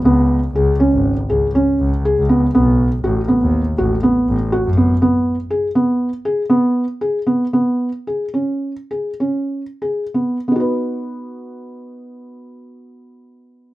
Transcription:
X:1
M:5/4
L:1/16
Q:1/4=119
K:Bmix
V:1 name="Felt piano"
B,4 G2 C4 G2 C4 G2 B,2 | B,4 F2 B,4 F2 B,4 F2 B,2 | B,4 G2 B,4 G2 B,4 G2 B,2 | B,4 G2 C4 G2 C4 G2 B,2 |
[B,DFB]16- [B,DFB]4 |]
V:2 name="Double bass" clef=bass
C,,4 C,,2 z G,,,2 z C,,2 z2 C,,2 z C,,2 z | B,,,4 A,,,2 z D,,2 z A,,,2 z2 A,,,2 z F,,2 z | z16 z4 | z16 z4 |
z16 z4 |]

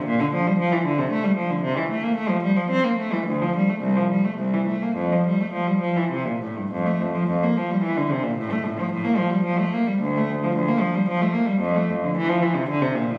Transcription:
X:1
M:3/4
L:1/16
Q:1/4=110
K:F
V:1 name="Cello" clef=bass
B,, D, F, G, F, E, D, C, A, G, F, D, | C, E, A, B, A, F, G, F, C B, A, E, | D,, F, G, A, C,, F, G, A, C,, E, A, B, | F,, F, G, A, F, G, F, E, C, B,, A,, G,, |
F,, A, F,, F, F,, B, F, G, E, D, C, B,, | A,, A, A,, F, A,, B, F, G, F, A, B, G, | D,, A, D,, F, D,, B, F, G, F, A, B, G, | F,, A, F,, D, E, F, E, C, D, C, B,, A,, |]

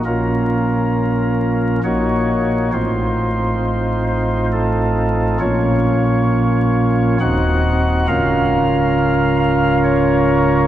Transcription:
X:1
M:3/4
L:1/8
Q:1/4=68
K:Bbm
V:1 name="Pipe organ"
B4 d2 | c3 c =A2 | d4 g2 | f3 f d2 |]
V:2 name="Pipe organ"
[B,,,B,,B,DF]4 [B,,,B,,B,EG]2 | [=A,,,=A,,CEF]6 | [B,,,B,,B,DF]4 [E,,,E,,CEG]2 | [D,,,D,,DFB]6 |]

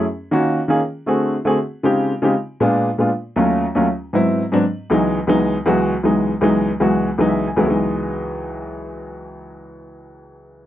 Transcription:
X:1
M:4/4
L:1/16
Q:1/4=157
K:C#m
V:1 name="Grand piano"
z16 | z16 | z16 | z16 |
z12 e2 g2 | z16 | z16 |]
V:2 name="Grand piano"
z3 [D,^A,C^EF]3 z [D,A,CEG] z3 [=D,=A,=CFG]3 z [D,A,CFG] | z3 [C,G,^B,D^E=G]3 z [C,^G,B,DE=G] z3 [^A,,^G,=B,=DE]3 z [A,,G,B,DE] | z3 [D,,F,A,C^E]3 z [D,,F,A,CE] z3 [G,,F,B,^B,=E]3 z [G,,F,=B,^B,=D] | z3 [C,,E,F,G,B,D]3 z [C,,E,F,G,B,D]3 z [C,,E,F,G,B,F]3 z [C,,E,F,G,B,D]- |
[C,,E,F,G,B,D]2 z [C,,E,F,G,B,D]3 z [C,,E,F,G,B,F]3 z [C,,E,F,G,B,D]3 z [C,,E,F,G,B,E] | [C,,E,F,G,B,D]16- | [C,,E,F,G,B,D]16 |]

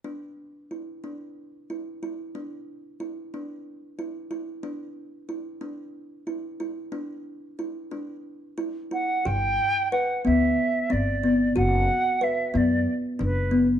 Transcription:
X:1
M:7/8
L:1/16
Q:1/4=92
K:Dmix
V:1 name="Flute"
z12 z2 | z12 z2 | z12 z2 | z12 f2 |
g4 f2 e4 d4 | f4 e2 d2 z2 B3 z |]
V:2 name="Kalimba"
D4 E2 D4 E2 E2 | D4 E2 D4 E2 E2 | D4 E2 D4 E2 E2 | D4 E2 D4 E2 E2 |
G4 B2 B,4 C2 B,2 | F4 B2 B,4 D2 B,2 |]
V:3 name="Upright bass" clef=bass
z12 z2 | z12 z2 | z12 z2 | z12 z2 |
G,,,2 z4 D,,2 z2 G,,,4 | F,,,2 z4 F,,2 z2 F,,,4 |]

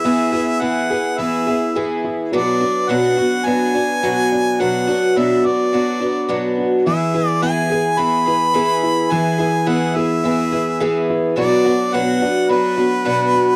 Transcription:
X:1
M:4/4
L:1/8
Q:1/4=106
K:Bdor
V:1 name="Harmonica"
e2 f2 e3 z | d2 f2 g4 | f2 e d4 z | e2 g2 b4 |
g2 f e4 z | d2 f2 B4 |]
V:2 name="Twelve-string acoustic guitar"
[E,B,EG] [B,EG] [E,B,EG] [B,EG] [E,B,EG] [B,EG] [E,B,EG]2 | [B,,F,B,DF] [B,DF] [B,,F,B,DF] [B,DF] [F,B,DF] [B,DF] [B,,F,B,DF]2 | [B,,F,B,DF] [B,DF] [B,,F,B,DF] [B,DF] [F,B,DF] [B,DF] [B,,F,B,DF]2 | [E,B,EG] [B,EG] [E,B,EG] [B,EG] [E,B,EG] [B,EG] [E,B,EG]2 |
[E,B,EG] [B,EG] [E,B,EG] [B,EG] [E,B,EG] [B,EG] [E,B,EG]2 | [B,,F,B,DF] [B,DF] [B,,F,B,DF] [B,DF] [F,B,DF] [B,DF] [B,,F,B,DF]2 |]
V:3 name="Upright piano"
[B,EG] E B, G B, E G E | F, D B, F B, D F D | F, D B, F B, D F D | E, E B, G B, E G E |
E, E B, G B, E G E | F, B, F, D F, B, D B, |]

